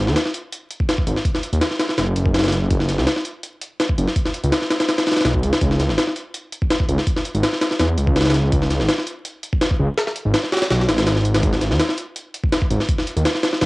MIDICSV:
0, 0, Header, 1, 3, 480
1, 0, Start_track
1, 0, Tempo, 363636
1, 1651, Time_signature, 4, 2, 24, 8
1, 18029, End_track
2, 0, Start_track
2, 0, Title_t, "Detuned saw bass"
2, 0, Program_c, 0, 39
2, 98, Note_on_c, 0, 39, 98
2, 200, Note_off_c, 0, 39, 0
2, 1410, Note_on_c, 0, 32, 86
2, 1524, Note_off_c, 0, 32, 0
2, 2016, Note_on_c, 0, 39, 97
2, 2119, Note_off_c, 0, 39, 0
2, 2611, Note_on_c, 0, 30, 89
2, 2828, Note_off_c, 0, 30, 0
2, 2850, Note_on_c, 0, 30, 80
2, 3437, Note_off_c, 0, 30, 0
2, 3457, Note_on_c, 0, 30, 92
2, 3560, Note_off_c, 0, 30, 0
2, 3571, Note_on_c, 0, 30, 92
2, 3939, Note_on_c, 0, 37, 95
2, 3958, Note_off_c, 0, 30, 0
2, 4040, Note_off_c, 0, 37, 0
2, 5250, Note_on_c, 0, 30, 84
2, 5364, Note_off_c, 0, 30, 0
2, 5856, Note_on_c, 0, 37, 96
2, 5959, Note_off_c, 0, 37, 0
2, 6928, Note_on_c, 0, 35, 100
2, 7169, Note_on_c, 0, 37, 100
2, 7189, Note_off_c, 0, 35, 0
2, 7284, Note_off_c, 0, 37, 0
2, 7411, Note_on_c, 0, 37, 94
2, 7776, Note_on_c, 0, 32, 97
2, 7796, Note_off_c, 0, 37, 0
2, 7879, Note_off_c, 0, 32, 0
2, 9089, Note_on_c, 0, 37, 86
2, 9204, Note_off_c, 0, 37, 0
2, 9696, Note_on_c, 0, 32, 98
2, 9799, Note_off_c, 0, 32, 0
2, 10291, Note_on_c, 0, 40, 85
2, 10508, Note_off_c, 0, 40, 0
2, 10531, Note_on_c, 0, 37, 82
2, 11117, Note_off_c, 0, 37, 0
2, 11135, Note_on_c, 0, 37, 92
2, 11239, Note_off_c, 0, 37, 0
2, 11250, Note_on_c, 0, 37, 99
2, 11613, Note_on_c, 0, 32, 99
2, 11633, Note_off_c, 0, 37, 0
2, 11718, Note_off_c, 0, 32, 0
2, 12928, Note_on_c, 0, 37, 86
2, 13043, Note_off_c, 0, 37, 0
2, 13534, Note_on_c, 0, 32, 101
2, 13638, Note_off_c, 0, 32, 0
2, 14130, Note_on_c, 0, 35, 91
2, 14347, Note_off_c, 0, 35, 0
2, 14370, Note_on_c, 0, 32, 81
2, 14957, Note_off_c, 0, 32, 0
2, 14977, Note_on_c, 0, 32, 96
2, 15079, Note_off_c, 0, 32, 0
2, 15089, Note_on_c, 0, 32, 95
2, 15455, Note_on_c, 0, 39, 96
2, 15475, Note_off_c, 0, 32, 0
2, 15559, Note_off_c, 0, 39, 0
2, 16770, Note_on_c, 0, 32, 90
2, 16884, Note_off_c, 0, 32, 0
2, 17377, Note_on_c, 0, 39, 95
2, 17479, Note_off_c, 0, 39, 0
2, 17971, Note_on_c, 0, 30, 91
2, 18029, Note_off_c, 0, 30, 0
2, 18029, End_track
3, 0, Start_track
3, 0, Title_t, "Drums"
3, 97, Note_on_c, 9, 38, 38
3, 211, Note_off_c, 9, 38, 0
3, 211, Note_on_c, 9, 38, 107
3, 211, Note_on_c, 9, 42, 84
3, 337, Note_off_c, 9, 38, 0
3, 337, Note_on_c, 9, 38, 46
3, 343, Note_off_c, 9, 42, 0
3, 451, Note_on_c, 9, 42, 64
3, 469, Note_off_c, 9, 38, 0
3, 583, Note_off_c, 9, 42, 0
3, 692, Note_on_c, 9, 42, 87
3, 824, Note_off_c, 9, 42, 0
3, 932, Note_on_c, 9, 42, 62
3, 1058, Note_on_c, 9, 36, 85
3, 1064, Note_off_c, 9, 42, 0
3, 1173, Note_on_c, 9, 38, 106
3, 1173, Note_on_c, 9, 42, 83
3, 1190, Note_off_c, 9, 36, 0
3, 1298, Note_on_c, 9, 36, 91
3, 1305, Note_off_c, 9, 38, 0
3, 1305, Note_off_c, 9, 42, 0
3, 1413, Note_on_c, 9, 42, 67
3, 1430, Note_off_c, 9, 36, 0
3, 1538, Note_on_c, 9, 38, 42
3, 1545, Note_off_c, 9, 42, 0
3, 1651, Note_on_c, 9, 36, 101
3, 1653, Note_on_c, 9, 42, 81
3, 1670, Note_off_c, 9, 38, 0
3, 1778, Note_on_c, 9, 38, 55
3, 1783, Note_off_c, 9, 36, 0
3, 1785, Note_off_c, 9, 42, 0
3, 1890, Note_on_c, 9, 42, 64
3, 1910, Note_off_c, 9, 38, 0
3, 2019, Note_off_c, 9, 42, 0
3, 2019, Note_on_c, 9, 42, 41
3, 2130, Note_off_c, 9, 42, 0
3, 2130, Note_on_c, 9, 38, 107
3, 2130, Note_on_c, 9, 42, 85
3, 2257, Note_off_c, 9, 38, 0
3, 2257, Note_on_c, 9, 38, 38
3, 2262, Note_off_c, 9, 42, 0
3, 2370, Note_off_c, 9, 38, 0
3, 2370, Note_on_c, 9, 38, 97
3, 2370, Note_on_c, 9, 42, 75
3, 2497, Note_off_c, 9, 38, 0
3, 2497, Note_on_c, 9, 38, 51
3, 2502, Note_off_c, 9, 42, 0
3, 2612, Note_off_c, 9, 38, 0
3, 2612, Note_on_c, 9, 38, 99
3, 2612, Note_on_c, 9, 42, 75
3, 2744, Note_off_c, 9, 38, 0
3, 2744, Note_off_c, 9, 42, 0
3, 2850, Note_on_c, 9, 42, 63
3, 2976, Note_on_c, 9, 36, 88
3, 2982, Note_off_c, 9, 42, 0
3, 3091, Note_on_c, 9, 38, 85
3, 3091, Note_on_c, 9, 42, 64
3, 3108, Note_off_c, 9, 36, 0
3, 3153, Note_off_c, 9, 38, 0
3, 3153, Note_off_c, 9, 42, 0
3, 3153, Note_on_c, 9, 38, 81
3, 3153, Note_on_c, 9, 42, 63
3, 3216, Note_off_c, 9, 38, 0
3, 3216, Note_off_c, 9, 42, 0
3, 3216, Note_on_c, 9, 38, 86
3, 3216, Note_on_c, 9, 42, 62
3, 3273, Note_off_c, 9, 38, 0
3, 3273, Note_off_c, 9, 42, 0
3, 3273, Note_on_c, 9, 38, 84
3, 3273, Note_on_c, 9, 42, 63
3, 3329, Note_off_c, 9, 38, 0
3, 3329, Note_off_c, 9, 42, 0
3, 3329, Note_on_c, 9, 38, 53
3, 3329, Note_on_c, 9, 42, 66
3, 3461, Note_off_c, 9, 38, 0
3, 3461, Note_off_c, 9, 42, 0
3, 3569, Note_on_c, 9, 42, 82
3, 3570, Note_on_c, 9, 36, 101
3, 3697, Note_on_c, 9, 38, 47
3, 3701, Note_off_c, 9, 42, 0
3, 3702, Note_off_c, 9, 36, 0
3, 3810, Note_off_c, 9, 38, 0
3, 3810, Note_on_c, 9, 38, 34
3, 3810, Note_on_c, 9, 42, 64
3, 3937, Note_off_c, 9, 38, 0
3, 3937, Note_on_c, 9, 38, 39
3, 3942, Note_off_c, 9, 42, 0
3, 4051, Note_off_c, 9, 38, 0
3, 4051, Note_on_c, 9, 38, 107
3, 4051, Note_on_c, 9, 42, 82
3, 4176, Note_off_c, 9, 38, 0
3, 4176, Note_on_c, 9, 38, 46
3, 4183, Note_off_c, 9, 42, 0
3, 4289, Note_on_c, 9, 42, 64
3, 4308, Note_off_c, 9, 38, 0
3, 4421, Note_off_c, 9, 42, 0
3, 4530, Note_on_c, 9, 42, 85
3, 4662, Note_off_c, 9, 42, 0
3, 4769, Note_on_c, 9, 42, 73
3, 4901, Note_off_c, 9, 42, 0
3, 5011, Note_on_c, 9, 38, 103
3, 5011, Note_on_c, 9, 42, 77
3, 5137, Note_on_c, 9, 36, 92
3, 5143, Note_off_c, 9, 38, 0
3, 5143, Note_off_c, 9, 42, 0
3, 5252, Note_on_c, 9, 42, 65
3, 5269, Note_off_c, 9, 36, 0
3, 5378, Note_on_c, 9, 38, 42
3, 5384, Note_off_c, 9, 42, 0
3, 5490, Note_on_c, 9, 36, 103
3, 5490, Note_on_c, 9, 42, 82
3, 5510, Note_off_c, 9, 38, 0
3, 5615, Note_on_c, 9, 38, 55
3, 5622, Note_off_c, 9, 36, 0
3, 5622, Note_off_c, 9, 42, 0
3, 5730, Note_on_c, 9, 42, 65
3, 5747, Note_off_c, 9, 38, 0
3, 5856, Note_off_c, 9, 42, 0
3, 5856, Note_on_c, 9, 42, 41
3, 5970, Note_off_c, 9, 42, 0
3, 5970, Note_on_c, 9, 38, 113
3, 5970, Note_on_c, 9, 42, 83
3, 6096, Note_off_c, 9, 38, 0
3, 6096, Note_on_c, 9, 38, 41
3, 6102, Note_off_c, 9, 42, 0
3, 6211, Note_off_c, 9, 38, 0
3, 6211, Note_on_c, 9, 38, 98
3, 6211, Note_on_c, 9, 42, 74
3, 6337, Note_off_c, 9, 38, 0
3, 6337, Note_off_c, 9, 42, 0
3, 6337, Note_on_c, 9, 38, 97
3, 6337, Note_on_c, 9, 42, 75
3, 6450, Note_off_c, 9, 38, 0
3, 6450, Note_off_c, 9, 42, 0
3, 6450, Note_on_c, 9, 38, 101
3, 6450, Note_on_c, 9, 42, 76
3, 6577, Note_off_c, 9, 38, 0
3, 6577, Note_off_c, 9, 42, 0
3, 6577, Note_on_c, 9, 38, 102
3, 6577, Note_on_c, 9, 42, 75
3, 6692, Note_off_c, 9, 38, 0
3, 6692, Note_off_c, 9, 42, 0
3, 6692, Note_on_c, 9, 38, 83
3, 6692, Note_on_c, 9, 42, 61
3, 6755, Note_off_c, 9, 38, 0
3, 6755, Note_off_c, 9, 42, 0
3, 6755, Note_on_c, 9, 38, 80
3, 6755, Note_on_c, 9, 42, 65
3, 6819, Note_off_c, 9, 38, 0
3, 6819, Note_off_c, 9, 42, 0
3, 6819, Note_on_c, 9, 38, 83
3, 6819, Note_on_c, 9, 42, 64
3, 6874, Note_off_c, 9, 38, 0
3, 6874, Note_off_c, 9, 42, 0
3, 6874, Note_on_c, 9, 38, 87
3, 6874, Note_on_c, 9, 42, 64
3, 6931, Note_off_c, 9, 38, 0
3, 6931, Note_off_c, 9, 42, 0
3, 6931, Note_on_c, 9, 38, 103
3, 6931, Note_on_c, 9, 42, 75
3, 7057, Note_on_c, 9, 36, 79
3, 7063, Note_off_c, 9, 38, 0
3, 7063, Note_off_c, 9, 42, 0
3, 7171, Note_on_c, 9, 42, 57
3, 7189, Note_off_c, 9, 36, 0
3, 7297, Note_off_c, 9, 42, 0
3, 7297, Note_on_c, 9, 38, 101
3, 7297, Note_on_c, 9, 42, 77
3, 7410, Note_on_c, 9, 36, 101
3, 7411, Note_off_c, 9, 42, 0
3, 7411, Note_on_c, 9, 42, 80
3, 7429, Note_off_c, 9, 38, 0
3, 7539, Note_on_c, 9, 38, 46
3, 7542, Note_off_c, 9, 36, 0
3, 7543, Note_off_c, 9, 42, 0
3, 7652, Note_off_c, 9, 38, 0
3, 7652, Note_on_c, 9, 38, 34
3, 7652, Note_on_c, 9, 42, 65
3, 7779, Note_off_c, 9, 38, 0
3, 7779, Note_on_c, 9, 38, 38
3, 7784, Note_off_c, 9, 42, 0
3, 7892, Note_off_c, 9, 38, 0
3, 7892, Note_on_c, 9, 38, 115
3, 7892, Note_on_c, 9, 42, 84
3, 8017, Note_off_c, 9, 38, 0
3, 8017, Note_on_c, 9, 38, 46
3, 8024, Note_off_c, 9, 42, 0
3, 8131, Note_on_c, 9, 42, 67
3, 8149, Note_off_c, 9, 38, 0
3, 8263, Note_off_c, 9, 42, 0
3, 8371, Note_on_c, 9, 42, 87
3, 8503, Note_off_c, 9, 42, 0
3, 8611, Note_on_c, 9, 42, 65
3, 8737, Note_on_c, 9, 36, 90
3, 8743, Note_off_c, 9, 42, 0
3, 8850, Note_on_c, 9, 38, 115
3, 8850, Note_on_c, 9, 42, 84
3, 8869, Note_off_c, 9, 36, 0
3, 8977, Note_on_c, 9, 36, 92
3, 8982, Note_off_c, 9, 38, 0
3, 8982, Note_off_c, 9, 42, 0
3, 9090, Note_on_c, 9, 42, 65
3, 9109, Note_off_c, 9, 36, 0
3, 9216, Note_on_c, 9, 38, 41
3, 9222, Note_off_c, 9, 42, 0
3, 9331, Note_on_c, 9, 36, 103
3, 9331, Note_on_c, 9, 42, 84
3, 9348, Note_off_c, 9, 38, 0
3, 9456, Note_on_c, 9, 38, 56
3, 9463, Note_off_c, 9, 36, 0
3, 9463, Note_off_c, 9, 42, 0
3, 9571, Note_on_c, 9, 42, 64
3, 9588, Note_off_c, 9, 38, 0
3, 9698, Note_off_c, 9, 42, 0
3, 9698, Note_on_c, 9, 42, 42
3, 9811, Note_off_c, 9, 42, 0
3, 9811, Note_on_c, 9, 38, 113
3, 9811, Note_on_c, 9, 42, 87
3, 9937, Note_off_c, 9, 38, 0
3, 9937, Note_on_c, 9, 38, 42
3, 9943, Note_off_c, 9, 42, 0
3, 10050, Note_off_c, 9, 38, 0
3, 10050, Note_on_c, 9, 38, 100
3, 10050, Note_on_c, 9, 42, 77
3, 10177, Note_off_c, 9, 38, 0
3, 10177, Note_on_c, 9, 38, 53
3, 10182, Note_off_c, 9, 42, 0
3, 10289, Note_off_c, 9, 38, 0
3, 10289, Note_on_c, 9, 38, 104
3, 10289, Note_on_c, 9, 42, 77
3, 10421, Note_off_c, 9, 38, 0
3, 10421, Note_off_c, 9, 42, 0
3, 10530, Note_on_c, 9, 42, 66
3, 10657, Note_on_c, 9, 36, 90
3, 10662, Note_off_c, 9, 42, 0
3, 10771, Note_on_c, 9, 38, 88
3, 10771, Note_on_c, 9, 42, 62
3, 10789, Note_off_c, 9, 36, 0
3, 10835, Note_off_c, 9, 38, 0
3, 10835, Note_off_c, 9, 42, 0
3, 10835, Note_on_c, 9, 38, 82
3, 10835, Note_on_c, 9, 42, 64
3, 10898, Note_off_c, 9, 38, 0
3, 10898, Note_off_c, 9, 42, 0
3, 10898, Note_on_c, 9, 38, 86
3, 10898, Note_on_c, 9, 42, 64
3, 10957, Note_off_c, 9, 38, 0
3, 10957, Note_off_c, 9, 42, 0
3, 10957, Note_on_c, 9, 38, 86
3, 10957, Note_on_c, 9, 42, 65
3, 11011, Note_off_c, 9, 38, 0
3, 11011, Note_off_c, 9, 42, 0
3, 11011, Note_on_c, 9, 38, 56
3, 11011, Note_on_c, 9, 42, 69
3, 11143, Note_off_c, 9, 38, 0
3, 11143, Note_off_c, 9, 42, 0
3, 11249, Note_on_c, 9, 42, 81
3, 11250, Note_on_c, 9, 36, 106
3, 11377, Note_on_c, 9, 38, 47
3, 11381, Note_off_c, 9, 42, 0
3, 11382, Note_off_c, 9, 36, 0
3, 11490, Note_off_c, 9, 38, 0
3, 11490, Note_on_c, 9, 38, 36
3, 11490, Note_on_c, 9, 42, 67
3, 11615, Note_off_c, 9, 38, 0
3, 11615, Note_on_c, 9, 38, 39
3, 11622, Note_off_c, 9, 42, 0
3, 11728, Note_off_c, 9, 38, 0
3, 11728, Note_on_c, 9, 38, 112
3, 11728, Note_on_c, 9, 42, 84
3, 11856, Note_off_c, 9, 38, 0
3, 11856, Note_on_c, 9, 38, 46
3, 11860, Note_off_c, 9, 42, 0
3, 11969, Note_on_c, 9, 42, 65
3, 11988, Note_off_c, 9, 38, 0
3, 12101, Note_off_c, 9, 42, 0
3, 12208, Note_on_c, 9, 42, 86
3, 12340, Note_off_c, 9, 42, 0
3, 12447, Note_on_c, 9, 42, 62
3, 12575, Note_on_c, 9, 36, 88
3, 12579, Note_off_c, 9, 42, 0
3, 12687, Note_on_c, 9, 38, 113
3, 12687, Note_on_c, 9, 42, 86
3, 12707, Note_off_c, 9, 36, 0
3, 12814, Note_on_c, 9, 36, 93
3, 12819, Note_off_c, 9, 38, 0
3, 12819, Note_off_c, 9, 42, 0
3, 12946, Note_off_c, 9, 36, 0
3, 13167, Note_on_c, 9, 38, 100
3, 13167, Note_on_c, 9, 42, 77
3, 13294, Note_off_c, 9, 38, 0
3, 13294, Note_on_c, 9, 38, 43
3, 13299, Note_off_c, 9, 42, 0
3, 13408, Note_on_c, 9, 42, 60
3, 13426, Note_off_c, 9, 38, 0
3, 13540, Note_off_c, 9, 42, 0
3, 13647, Note_on_c, 9, 38, 115
3, 13647, Note_on_c, 9, 42, 85
3, 13775, Note_off_c, 9, 38, 0
3, 13775, Note_on_c, 9, 38, 40
3, 13779, Note_off_c, 9, 42, 0
3, 13890, Note_off_c, 9, 38, 0
3, 13890, Note_on_c, 9, 38, 83
3, 13890, Note_on_c, 9, 42, 64
3, 13951, Note_off_c, 9, 38, 0
3, 13951, Note_off_c, 9, 42, 0
3, 13951, Note_on_c, 9, 38, 89
3, 13951, Note_on_c, 9, 42, 65
3, 14016, Note_off_c, 9, 38, 0
3, 14016, Note_off_c, 9, 42, 0
3, 14016, Note_on_c, 9, 38, 100
3, 14016, Note_on_c, 9, 42, 76
3, 14128, Note_off_c, 9, 38, 0
3, 14128, Note_off_c, 9, 42, 0
3, 14128, Note_on_c, 9, 38, 108
3, 14128, Note_on_c, 9, 42, 77
3, 14255, Note_off_c, 9, 38, 0
3, 14255, Note_on_c, 9, 38, 36
3, 14260, Note_off_c, 9, 42, 0
3, 14368, Note_off_c, 9, 38, 0
3, 14368, Note_on_c, 9, 38, 99
3, 14368, Note_on_c, 9, 42, 76
3, 14492, Note_off_c, 9, 38, 0
3, 14492, Note_off_c, 9, 42, 0
3, 14492, Note_on_c, 9, 38, 98
3, 14492, Note_on_c, 9, 42, 77
3, 14606, Note_off_c, 9, 38, 0
3, 14606, Note_off_c, 9, 42, 0
3, 14606, Note_on_c, 9, 38, 103
3, 14606, Note_on_c, 9, 42, 76
3, 14732, Note_off_c, 9, 38, 0
3, 14732, Note_on_c, 9, 38, 36
3, 14738, Note_off_c, 9, 42, 0
3, 14848, Note_on_c, 9, 42, 60
3, 14864, Note_off_c, 9, 38, 0
3, 14974, Note_off_c, 9, 42, 0
3, 14974, Note_on_c, 9, 38, 104
3, 14974, Note_on_c, 9, 42, 76
3, 15088, Note_off_c, 9, 42, 0
3, 15088, Note_on_c, 9, 42, 82
3, 15089, Note_on_c, 9, 36, 106
3, 15106, Note_off_c, 9, 38, 0
3, 15215, Note_on_c, 9, 38, 48
3, 15220, Note_off_c, 9, 42, 0
3, 15221, Note_off_c, 9, 36, 0
3, 15328, Note_off_c, 9, 38, 0
3, 15328, Note_on_c, 9, 38, 36
3, 15328, Note_on_c, 9, 42, 65
3, 15457, Note_off_c, 9, 38, 0
3, 15457, Note_on_c, 9, 38, 39
3, 15460, Note_off_c, 9, 42, 0
3, 15570, Note_off_c, 9, 38, 0
3, 15570, Note_on_c, 9, 38, 108
3, 15570, Note_on_c, 9, 42, 84
3, 15695, Note_off_c, 9, 38, 0
3, 15695, Note_on_c, 9, 38, 48
3, 15702, Note_off_c, 9, 42, 0
3, 15810, Note_on_c, 9, 42, 65
3, 15827, Note_off_c, 9, 38, 0
3, 15942, Note_off_c, 9, 42, 0
3, 16051, Note_on_c, 9, 42, 87
3, 16183, Note_off_c, 9, 42, 0
3, 16291, Note_on_c, 9, 42, 62
3, 16416, Note_on_c, 9, 36, 92
3, 16423, Note_off_c, 9, 42, 0
3, 16532, Note_on_c, 9, 38, 111
3, 16532, Note_on_c, 9, 42, 85
3, 16548, Note_off_c, 9, 36, 0
3, 16656, Note_on_c, 9, 36, 95
3, 16664, Note_off_c, 9, 38, 0
3, 16664, Note_off_c, 9, 42, 0
3, 16771, Note_on_c, 9, 42, 65
3, 16788, Note_off_c, 9, 36, 0
3, 16899, Note_on_c, 9, 38, 42
3, 16903, Note_off_c, 9, 42, 0
3, 17010, Note_on_c, 9, 36, 102
3, 17010, Note_on_c, 9, 42, 84
3, 17031, Note_off_c, 9, 38, 0
3, 17139, Note_on_c, 9, 38, 56
3, 17142, Note_off_c, 9, 36, 0
3, 17142, Note_off_c, 9, 42, 0
3, 17252, Note_on_c, 9, 42, 64
3, 17271, Note_off_c, 9, 38, 0
3, 17379, Note_off_c, 9, 42, 0
3, 17379, Note_on_c, 9, 42, 42
3, 17491, Note_off_c, 9, 42, 0
3, 17491, Note_on_c, 9, 38, 114
3, 17491, Note_on_c, 9, 42, 87
3, 17618, Note_off_c, 9, 38, 0
3, 17618, Note_on_c, 9, 38, 41
3, 17623, Note_off_c, 9, 42, 0
3, 17729, Note_off_c, 9, 38, 0
3, 17729, Note_on_c, 9, 38, 102
3, 17729, Note_on_c, 9, 42, 74
3, 17858, Note_off_c, 9, 38, 0
3, 17858, Note_on_c, 9, 38, 54
3, 17861, Note_off_c, 9, 42, 0
3, 17971, Note_off_c, 9, 38, 0
3, 17971, Note_on_c, 9, 38, 105
3, 17971, Note_on_c, 9, 42, 79
3, 18029, Note_off_c, 9, 38, 0
3, 18029, Note_off_c, 9, 42, 0
3, 18029, End_track
0, 0, End_of_file